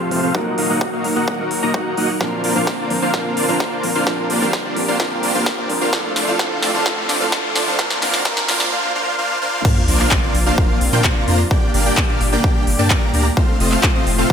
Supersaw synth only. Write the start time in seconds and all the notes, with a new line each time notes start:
0.00 A3 C4 F4 C5 F5
0.23 A3 C4 F4 C5 F5
0.35 A#3 D#4 F#4 D#5 F#5
0.58 A#3 D#4 F#4 D#5 F5
0.69 A#3 D#4 F#4 D#5 F#5
0.93 A#3 D#4 F#4 D#5 F5
1.16 A#3 D#4 F#4 D#5 F#5
1.28 A#3 D#4 F#4 D#5 F#5
1.62 A#3 D#4 F#4 D#5 A#5
1.74 A#3 D#4 F#4 D#5 F#5
1.97 A#3 D#4 F#4 D#5 F#5
2.21 A#3 D4 F4 C5 F5
2.44 A#3 D4 F4 C5 D5
2.55 A#3 D4 F4 C5 F5
2.79 A#3 D4 F4 C5 D5
3.02 A#3 D4 F4 C5 F5
3.14 A#3 D4 F4 C5 F5
3.37 A#3 D4 F4 C5 D5
3.49 A#3 D4 F4 C5 F5
3.72 A#3 D4 F4 C5 D5
3.95 A#3 D4 F4 C5 F5
4.07 A#3 D4 F4 C5 F5
4.30 A#3 D4 F4 C5 D5
4.42 A#3 D4 F4 C5 F5
4.65 A#3 D4 F4 C5 D5
4.88 A#3 D4 F4 C5 F5
5.00 A#3 D4 F4 C5 F5
5.23 A#3 D4 F4 C5 D5
5.35 A#3 D4 F4 C5 F5
5.58 A#3 D4 F4 C5 D5
5.81 A#3 D4 F4 C5 F5
5.93 A3 D4 F4 C5 F5
6.16 A3 D4 F4 C5 D5
6.28 A3 D4 F4 C5 F5
6.39 A3 D4 F4 C5 F5
6.63 A3 D4 F4 C5 D5
6.74 A3 D4 F4 C5 F5
6.86 A3 D4 F4 C5 F5
7.09 A3 D4 F4 C5 D5
7.21 A3 D4 F4 C5 F5
7.32 A3 D4 F4 C5 F5
7.56 A3 D4 F4 C5 D5
7.67 A3 D4 F4 C5 F5
7.79 A#3 D4 F4 C5 F5
8.02 A#3 D4 F4 C5 F5
8.25 A#3 D4 F4 C5 F5
8.48 A#3 D4 F4 C5 F5
8.72 A#3 D4 F4 C5 F5
8.95 A#3 D4 F4 C5 F5
9.18 A#3 D4 F4 C5 F5
9.42 A#3 D4 F4 C5 F5
9.65 A#3 D4 F4 C5 F5
9.88 A#3 D4 F4 C5 D5
10.00 A#3 D4 F4 C5 F5
10.23 A#3 D4 F4 C5 D5
10.46 A#3 D4 F4 C5 F5
10.58 A#3 D4 F4 C5 F5
10.93 A#3 D4 F4 C5 G5
11.04 A#3 D4 F4 C5 A#5
11.28 A#3 D4 F4 C5 A#5
11.51 A#3 D4 G4 D5 G5
11.74 A#3 D4 G4 D5 F5
11.86 A#3 D4 G4 D5 G5
12.09 A#3 D4 G4 D5 F5
12.32 A#3 D4 G4 D5 G5
12.44 A#3 D4 G4 D5 G5
12.79 A#3 D4 G4 D5 A5
12.90 A#3 D4 G4 D5 A#5
13.14 A#3 D4 G4 D5 A#5
13.37 A3 C4 F4 C5 F5
13.60 A3 C4 F4 C5 D#5
13.72 A3 C4 F4 C5 F5
13.95 A3 C4 F4 C5 D#5
14.18 A3 C4 F4 C5 F5